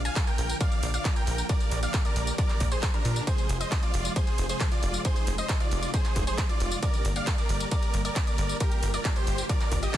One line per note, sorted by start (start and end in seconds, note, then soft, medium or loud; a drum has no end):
0.00 3.24 D3 medium
0.00 6.79 F3 medium
0.00 3.24 A#3 medium
0.00 1.45 F4 medium
0.05 0.25 F5 medium
0.05 0.25 G#5 medium
0.05 closed hi-hat soft
0.05 tambourine medium
0.16 kick loud
0.16 clap loud
0.16 closed hi-hat medium
0.16 ride medium
0.16 tambourine medium
0.27 0.57 A#4 medium
0.27 0.57 G5 medium
0.27 0.57 G5 loud
0.27 closed hi-hat soft
0.27 tambourine soft
0.38 0.54 A#1 medium
0.38 open hi-hat loud
0.49 closed hi-hat soft
0.49 tambourine medium
0.60 0.90 D5 medium
0.60 0.90 F5 loud
0.60 kick loud
0.60 closed hi-hat medium
0.60 ride medium
0.60 tambourine medium
0.72 closed hi-hat soft
0.72 tambourine soft
0.83 0.99 A#1 loud
0.83 open hi-hat loud
0.94 1.14 D5 medium
0.94 1.14 F5 medium
0.94 closed hi-hat soft
0.94 tambourine medium
1.05 kick loud
1.05 clap loud
1.05 closed hi-hat medium
1.05 ride medium
1.05 tambourine medium
1.16 1.46 A#4 medium
1.16 1.46 G5 loud
1.16 closed hi-hat soft
1.16 tambourine soft
1.27 1.43 A#1 loud
1.27 open hi-hat loud
1.38 tambourine medium
1.49 1.79 A#4 medium
1.49 1.79 D5 loud
1.49 kick loud
1.49 closed hi-hat medium
1.49 ride medium
1.49 tambourine medium
1.60 closed hi-hat soft
1.60 tambourine soft
1.71 1.87 A#1 loud
1.71 open hi-hat loud
1.83 2.03 D5 medium
1.83 2.03 F5 medium
1.83 closed hi-hat soft
1.83 tambourine medium
1.94 kick loud
1.94 clap loud
1.94 closed hi-hat medium
1.94 ride medium
1.94 tambourine medium
2.05 2.35 A#4 medium
2.05 2.35 D5 loud
2.05 2.35 D5 medium
2.05 closed hi-hat soft
2.05 tambourine soft
2.16 2.32 A#1 medium
2.16 open hi-hat loud
2.27 closed hi-hat soft
2.27 tambourine medium
2.38 2.68 A#4 medium
2.38 2.68 D5 loud
2.38 2.68 D5 medium
2.38 kick loud
2.38 closed hi-hat medium
2.38 ride medium
2.38 tambourine medium
2.49 clap soft
2.49 closed hi-hat soft
2.49 tambourine soft
2.60 2.76 A#1 loud
2.60 kick medium
2.60 open hi-hat loud
2.72 2.92 G#4 medium
2.72 2.91 C5 medium
2.72 2.92 C5 medium
2.72 closed hi-hat soft
2.72 tambourine medium
2.83 kick loud
2.83 clap loud
2.83 closed hi-hat medium
2.83 ride medium
2.83 tambourine medium
2.94 3.24 D4 medium
2.94 3.24 A#4 loud
2.94 closed hi-hat soft
2.94 tambourine soft
3.05 3.21 A#2 medium
3.05 open hi-hat loud
3.16 tambourine medium
3.27 6.79 C3 medium
3.27 6.79 G#3 medium
3.27 5.03 F4 medium
3.27 3.57 G#4 medium
3.27 3.57 C5 loud
3.27 kick loud
3.27 closed hi-hat medium
3.27 ride medium
3.27 tambourine medium
3.38 closed hi-hat soft
3.38 tambourine soft
3.49 3.65 F1 loud
3.49 open hi-hat loud
3.60 3.80 C5 medium
3.60 3.80 D#5 medium
3.60 closed hi-hat soft
3.60 tambourine medium
3.72 kick loud
3.72 clap loud
3.72 closed hi-hat medium
3.72 ride medium
3.72 tambourine medium
3.83 4.13 F4 medium
3.83 4.13 D5 medium
3.83 4.13 D5 loud
3.83 closed hi-hat soft
3.83 tambourine soft
3.94 4.10 F1 medium
3.94 open hi-hat loud
4.05 closed hi-hat soft
4.05 tambourine medium
4.16 4.46 G#4 medium
4.16 4.46 C5 medium
4.16 kick loud
4.16 closed hi-hat medium
4.16 ride medium
4.16 tambourine medium
4.27 closed hi-hat soft
4.27 tambourine soft
4.38 4.54 F1 medium
4.38 open hi-hat loud
4.49 4.69 G#4 medium
4.49 4.69 C5 medium
4.49 closed hi-hat soft
4.49 tambourine medium
4.60 kick loud
4.60 clap loud
4.60 closed hi-hat medium
4.60 ride medium
4.60 tambourine medium
4.72 5.01 F4 medium
4.72 5.01 D5 medium
4.72 5.01 D5 loud
4.72 closed hi-hat soft
4.72 tambourine soft
4.83 4.99 F1 loud
4.83 open hi-hat loud
4.94 tambourine medium
5.05 5.35 G#4 medium
5.05 5.35 C5 loud
5.05 kick loud
5.05 closed hi-hat medium
5.05 ride medium
5.05 tambourine medium
5.16 closed hi-hat soft
5.16 tambourine soft
5.27 5.43 F1 loud
5.27 open hi-hat loud
5.38 5.58 C5 medium
5.38 5.58 D#5 medium
5.38 closed hi-hat soft
5.38 tambourine medium
5.49 kick loud
5.49 clap loud
5.49 closed hi-hat medium
5.49 ride medium
5.49 tambourine medium
5.60 5.90 F4 medium
5.60 5.90 D5 loud
5.60 5.90 D5 medium
5.60 closed hi-hat soft
5.60 tambourine soft
5.71 5.87 F1 medium
5.71 open hi-hat loud
5.83 closed hi-hat soft
5.83 tambourine medium
5.94 6.24 G#4 medium
5.94 6.24 C5 medium
5.94 kick loud
5.94 closed hi-hat medium
5.94 ride medium
5.94 tambourine medium
6.05 clap soft
6.05 closed hi-hat soft
6.05 tambourine soft
6.16 6.32 F1 loud
6.16 kick medium
6.16 open hi-hat loud
6.27 6.47 G#4 medium
6.27 6.47 C5 medium
6.27 closed hi-hat soft
6.27 tambourine medium
6.38 kick loud
6.38 clap loud
6.38 closed hi-hat medium
6.38 ride medium
6.38 tambourine medium
6.49 6.79 F4 medium
6.49 6.79 D5 medium
6.49 6.79 D5 loud
6.49 closed hi-hat soft
6.49 tambourine soft
6.60 6.76 F1 loud
6.60 open hi-hat loud
6.71 tambourine medium
6.83 9.97 D3 medium
6.83 9.97 G3 medium
6.83 9.97 A#3 medium
6.83 8.59 G4 medium
6.83 7.12 A#4 medium
6.83 7.13 D5 loud
6.83 kick loud
6.83 closed hi-hat loud
6.83 ride medium
6.83 tambourine medium
6.94 closed hi-hat soft
6.94 tambourine soft
7.05 7.21 G1 loud
7.05 open hi-hat loud
7.16 7.36 D5 medium
7.16 7.36 F5 medium
7.16 closed hi-hat soft
7.16 tambourine medium
7.27 kick loud
7.27 clap loud
7.27 closed hi-hat loud
7.27 ride medium
7.27 tambourine medium
7.38 7.68 A#4 medium
7.38 7.68 D5 medium
7.38 7.68 D5 loud
7.38 closed hi-hat soft
7.38 tambourine soft
7.49 7.65 G1 medium
7.49 open hi-hat loud
7.60 closed hi-hat soft
7.60 tambourine medium
7.71 8.01 A#4 medium
7.71 8.01 D5 loud
7.71 kick loud
7.71 closed hi-hat loud
7.71 ride medium
7.71 tambourine medium
7.83 closed hi-hat soft
7.83 tambourine soft
7.94 8.10 G1 medium
7.94 open hi-hat loud
8.05 8.25 A#4 medium
8.05 8.25 D5 medium
8.05 closed hi-hat soft
8.05 tambourine medium
8.16 kick loud
8.16 clap loud
8.16 closed hi-hat loud
8.16 ride medium
8.16 tambourine medium
8.27 8.57 A#4 medium
8.27 8.57 D5 medium
8.27 8.57 D5 loud
8.27 closed hi-hat soft
8.27 tambourine soft
8.38 8.54 G1 loud
8.38 open hi-hat loud
8.49 tambourine medium
8.60 8.90 G4 medium
8.60 8.90 A#4 loud
8.60 kick loud
8.60 closed hi-hat medium
8.60 ride medium
8.60 tambourine medium
8.72 closed hi-hat soft
8.72 tambourine soft
8.83 8.98 G1 loud
8.83 open hi-hat loud
8.94 9.14 A#4 medium
8.94 9.14 D5 loud
8.94 9.14 D5 medium
8.94 closed hi-hat soft
8.94 tambourine medium
9.05 kick loud
9.05 clap loud
9.05 closed hi-hat loud
9.05 ride medium
9.05 tambourine medium
9.16 9.46 G4 medium
9.16 9.46 C5 loud
9.16 9.46 C5 medium
9.16 closed hi-hat soft
9.16 tambourine soft
9.27 9.43 G1 medium
9.27 open hi-hat loud
9.38 closed hi-hat soft
9.38 tambourine medium
9.49 9.79 A#4 medium
9.49 9.79 D5 loud
9.49 kick loud
9.49 closed hi-hat loud
9.49 ride medium
9.49 tambourine medium
9.61 clap soft
9.61 closed hi-hat soft
9.61 tambourine soft
9.72 9.87 G1 loud
9.72 kick medium
9.72 open hi-hat loud
9.83 9.97 G4 medium
9.83 9.97 D#5 medium
9.83 closed hi-hat soft
9.83 tambourine medium
9.94 kick loud
9.94 clap loud
9.94 closed hi-hat loud
9.94 ride medium
9.94 tambourine medium